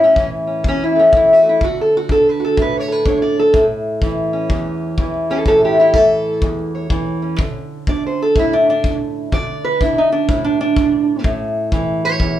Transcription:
0.00 0.65 A2 medium
0.00 0.28 C#4 medium
0.16 1.11 E3 medium
0.16 kick medium
0.47 0.65 C#4 medium
0.64 1.60 E2 medium
0.64 kick medium
0.68 0.83 C#4 loud
0.84 0.98 E4 medium
0.95 1.42 A3 soft
0.95 1.14 C#4 medium
1.12 1.61 E3 medium
1.12 kick medium
1.17 1.31 E4 loud
1.33 1.47 F#4 medium
1.42 1.64 A3 soft
1.49 1.63 E4 medium
1.61 3.51 D3 medium
1.61 1.79 F#4 medium
1.61 kick medium
1.81 1.95 A4 medium
1.97 2.11 F#4 medium
2.09 3.05 D4 medium
2.09 2.27 A4 medium
2.09 kick medium
2.29 2.43 B4 medium
2.40 3.52 F#4 medium
2.45 2.59 A4 medium
2.57 3.52 A2 medium
2.57 kick medium
2.62 2.76 B4 loud
2.79 2.92 C#5 medium
2.88 3.39 A4 soft
2.88 3.07 B4 loud
3.06 3.52 D4 medium
3.06 3.22 C#5 medium
3.06 kick medium
3.22 3.38 D5 medium
3.39 3.64 A4 medium
3.53 4.50 A2 medium
3.53 kick medium
4.02 4.98 E3 medium
4.02 kick medium
4.33 5.29 C#4 medium
4.50 5.46 E2 medium
4.50 kick medium
4.98 5.94 E3 medium
4.98 kick medium
5.30 5.37 C#4 medium
5.30 5.47 A4 medium
5.30 5.45 C#5 soft
5.46 6.43 A2 medium
5.46 5.51 C#4 medium
5.46 5.63 A4 loud
5.46 kick medium
5.64 5.78 E4 medium
5.64 5.80 G4 medium
5.80 5.95 E4 medium
5.80 5.95 G4 medium
5.94 6.89 E3 medium
5.94 6.43 A4 loud
5.94 kick medium
6.42 7.39 E2 medium
6.42 kick medium
6.75 7.38 C#5 soft
6.90 7.39 E3 medium
6.90 kick medium
7.22 7.40 C#4 soft
7.39 9.30 D3 medium
7.39 kick medium
7.87 8.52 D4 medium
7.87 8.04 D5 loud
7.87 kick medium
8.07 8.21 C5 medium
8.22 8.37 A4 medium
8.36 9.32 A2 medium
8.36 8.53 E4 loud
8.36 kick medium
8.53 8.68 D4 medium
8.70 8.94 D4 medium
8.84 kick medium
9.32 11.22 D3 medium
9.32 9.64 D5 loud
9.32 kick medium
9.65 9.80 B4 loud
9.81 9.96 D4 medium
9.81 9.97 E4 loud
9.81 kick medium
9.98 10.12 D#4 medium
10.12 10.28 D4 medium
10.29 11.23 A2 medium
10.29 10.44 E4 loud
10.29 kick medium
10.45 10.59 D4 loud
10.61 11.24 D4 loud
10.77 kick medium
11.24 12.20 A2 medium
11.24 kick medium
11.72 12.39 E3 medium
11.72 kick medium
12.05 12.39 C#5 loud
12.20 12.39 E2 medium
12.20 kick medium

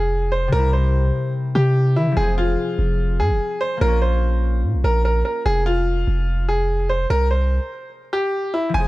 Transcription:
0.00 0.49 F1 loud
0.00 0.30 G#4 medium
0.32 0.48 C5 medium
0.48 2.22 C3 medium
0.52 1.12 C2 loud
0.52 2.22 G3 medium
0.52 0.69 A#4 loud
0.59 3.20 E4 medium
0.73 1.31 C5 medium
1.55 1.98 C3 loud
1.55 1.94 G4 medium
1.96 2.08 E3 loud
1.96 2.13 E4 medium
2.07 2.17 C3 medium
2.12 3.86 F3 medium
2.17 2.56 F1 loud
2.17 3.94 C4 medium
2.17 2.33 G#4 loud
2.22 4.50 G#4 medium
2.38 3.16 F4 medium
2.79 3.21 F1 loud
3.20 3.31 G#2 loud
3.20 3.58 G#4 medium
3.30 3.40 F1 loud
3.61 3.77 C5 medium
3.77 6.98 A#3 medium
3.81 4.65 A#1 loud
3.81 6.35 F4 medium
3.81 3.98 A#4 loud
3.88 6.77 C#4 medium
4.02 4.60 C5 medium
4.64 4.75 A#2 loud
4.74 4.84 A#1 loud
4.84 5.24 A#1 loud
4.84 5.00 A#4 medium
5.05 5.21 A#4 medium
5.25 5.41 A#4 medium
5.46 6.05 F1 loud
5.46 5.62 G#4 loud
5.66 6.44 F4 medium
6.07 7.06 F1 loud
6.49 6.87 G#4 medium
6.89 7.06 C5 medium
7.10 7.59 C2 loud
7.10 7.26 A#4 loud
7.31 7.89 C5 medium
8.13 8.52 G4 medium
8.54 8.70 E4 medium
8.69 8.88 F3 medium
8.74 8.88 F1 loud
8.74 8.88 C4 medium
8.74 8.88 G#5 loud
8.80 8.88 G#4 medium

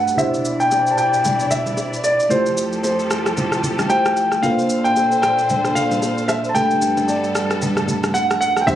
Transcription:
0.00 0.16 G2 medium
0.00 0.16 G3 medium
0.00 0.14 A3 medium
0.00 0.14 D4 medium
0.00 0.15 F#4 medium
0.00 0.15 G4 medium
0.00 0.16 A4 medium
0.00 0.15 B4 medium
0.00 0.16 B4 medium
0.00 0.19 F#5 medium
0.08 shaker soft
0.17 2.26 B2 medium
0.17 2.29 B2 medium
0.17 2.26 D4 medium
0.17 2.29 D4 medium
0.17 2.28 E4 medium
0.17 2.27 E4 medium
0.17 2.27 G4 medium
0.17 2.28 C5 medium
0.17 2.28 D5 medium
0.17 0.61 E5 loud
0.17 low conga medium
0.17 shaker medium
0.34 shaker medium
0.45 shaker loud
0.60 0.93 G5 loud
0.60 shaker soft
0.71 high bongo medium
0.71 shaker medium
0.87 shaker soft
0.92 0.98 A5 medium
0.98 1.53 G5 medium
0.98 shaker medium
1.13 shaker medium
1.24 low bongo medium
1.24 low conga medium
1.24 shaker medium
1.40 shaker soft
1.51 2.06 E5 loud
1.51 low conga medium
1.51 shaker medium
1.66 low bongo medium
1.66 shaker soft
1.77 high bongo medium
1.77 shaker medium
1.93 shaker soft
2.04 2.31 D5 medium
2.04 shaker medium
2.20 shaker soft
2.29 4.41 F2 medium
2.29 4.41 F3 medium
2.29 3.86 A3 medium
2.29 3.87 E4 medium
2.29 3.87 F4 medium
2.29 4.41 G4 medium
2.29 3.87 G4 medium
2.29 4.41 A4 medium
2.29 2.82 C5 medium
2.29 3.88 C5 medium
2.29 low conga medium
2.29 shaker medium
2.46 shaker medium
2.57 shaker loud
2.73 shaker soft
2.83 3.59 C5 medium
2.83 high bongo medium
2.83 shaker medium
2.99 shaker soft
3.11 cross-stick loud
3.11 shaker medium
3.26 cross-stick medium
3.26 shaker soft
3.37 low bongo medium
3.37 low conga medium
3.37 shaker medium
3.52 cross-stick medium
3.52 shaker soft
3.63 low conga medium
3.63 shaker medium
3.79 cross-stick medium
3.79 low bongo medium
3.79 shaker medium
3.90 4.43 A3 soft
3.90 4.43 E4 soft
3.90 4.42 F4 soft
3.90 4.43 G4 soft
3.90 4.44 C5 medium
3.90 4.45 G5 loud
3.90 high bongo medium
3.90 shaker medium
4.06 cross-stick loud
4.06 shaker soft
4.17 shaker medium
4.32 cross-stick medium
4.32 shaker soft
4.42 6.53 A#2 medium
4.42 6.51 A#3 medium
4.42 6.51 D4 medium
4.42 6.53 D4 medium
4.42 6.52 F4 medium
4.42 6.53 A4 medium
4.42 6.52 A4 medium
4.42 4.51 B4 medium
4.42 6.53 C5 medium
4.42 4.86 F5 loud
4.42 low conga medium
4.42 shaker medium
4.51 6.56 C5 medium
4.59 shaker soft
4.70 shaker loud
4.84 5.20 G5 loud
4.84 shaker medium
4.96 high bongo medium
4.96 shaker medium
5.12 shaker soft
5.22 5.77 G5 loud
5.22 cross-stick loud
5.22 shaker medium
5.39 shaker soft
5.49 low bongo medium
5.49 low conga medium
5.49 shaker medium
5.65 cross-stick medium
5.65 shaker medium
5.75 6.30 F5 loud
5.75 low conga medium
5.75 shaker medium
5.91 low bongo medium
5.91 shaker medium
6.02 high bongo medium
6.02 shaker medium
6.18 shaker medium
6.28 6.50 E5 medium
6.28 cross-stick medium
6.28 shaker medium
6.44 shaker soft
6.49 6.55 A5 medium
6.54 8.66 G2 medium
6.54 8.66 G3 medium
6.54 8.63 A3 medium
6.54 8.66 B3 medium
6.54 8.64 D4 medium
6.54 8.64 G4 medium
6.54 8.66 A4 medium
6.54 8.64 A4 medium
6.54 8.65 B4 medium
6.54 7.10 G5 loud
6.54 low conga medium
6.54 shaker medium
6.71 shaker soft
6.82 low bongo medium
6.82 shaker loud
6.97 low bongo medium
6.97 shaker soft
7.08 7.84 D5 medium
7.08 high bongo medium
7.08 shaker medium
7.24 shaker soft
7.35 cross-stick loud
7.35 shaker medium
7.51 cross-stick loud
7.51 shaker medium
7.62 low bongo medium
7.62 low conga medium
7.62 shaker medium
7.77 cross-stick medium
7.77 high bongo medium
7.77 shaker medium
7.88 high bongo soft
7.88 low conga medium
7.88 shaker medium
8.04 cross-stick medium
8.04 low bongo medium
8.04 shaker medium
8.14 8.39 F#5 loud
8.14 high bongo medium
8.14 shaker medium
8.31 cross-stick loud
8.31 shaker soft
8.41 8.62 F#5 loud
8.41 shaker medium
8.57 cross-stick medium
8.57 shaker soft
8.61 8.68 G5 medium
8.67 8.75 C2 loud
8.67 8.75 B2 medium
8.67 8.75 D4 medium
8.67 8.75 E4 medium
8.67 8.75 G4 medium
8.67 8.75 C5 medium
8.67 8.75 E5 loud
8.67 kick loud
8.67 shaker medium

